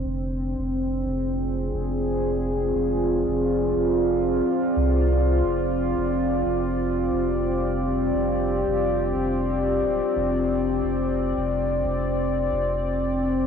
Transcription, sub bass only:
X:1
M:4/4
L:1/16
Q:"Swing 16ths" 1/4=89
K:Fdor
V:1 name="Sub bass" clef=bass
F,,,3 F,,,3 F,,,4 F,,,6 | F,,,3 F,,,3 F,,,4 z2 C,,4 | F,,,3 F,,,3 F,,,4 F,,,6 | F,,,3 F,,,3 F,,,4 D,,, z F,,,4 |
F,,,3 F,,,3 F,,,4 F,,,6 |]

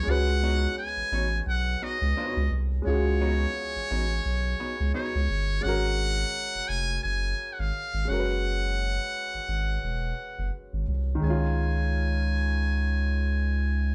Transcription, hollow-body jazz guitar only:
X:1
M:4/4
L:1/16
Q:"Swing 16ths" 1/4=86
K:F#dor
V:1 name="Hollow-body jazz guitar"
z2 [B,DFc]2 z2 [B,DFc]2 z2 [B,DFc]2 [B,DFc]2 z2 | z2 [B,DFc]2 z2 [B,DFc]2 z2 [B,DFc]2 [B,DFc] z3 | z16 | z16 |
z16 |]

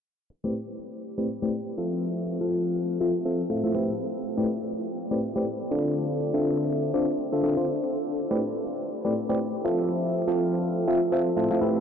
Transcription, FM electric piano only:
X:1
M:4/4
L:1/16
Q:"Swing 16ths" 1/4=122
K:Am
V:1 name="FM electric piano"
z3 [A,,CGBd] z4 z [A,,CGBd] z [A,,CGBd] z2 [F,CFAe]2- | [F,CFAe]3 [F,CFAf]4- [F,CFAf] [F,CFAe] z [F,CFAe] z [A,,CFAe] [A,,CFAe] [A,,CGBe] z | z3 [A,,CGBd] z4 z [A,,CGBd] z [A,,CGBd] z2 [D,CFAd]2- | [D,CFAd]3 [D,CFAe]4- [D,CFAe] [D,CFAd] z2 [D,CFAe] [D,CFAe] [D,CFAc] z2 |
z3 [A,,CGBd] z4 z [A,,CGBd] z [A,,CGBd] z2 [F,CFAe]2- | [F,CFAe]3 [F,CFAf]4- [F,CFAf] [F,CFAe] z [F,CFAe] z [A,,CFAe] [A,,CFAe] [A,,CGBe] z |]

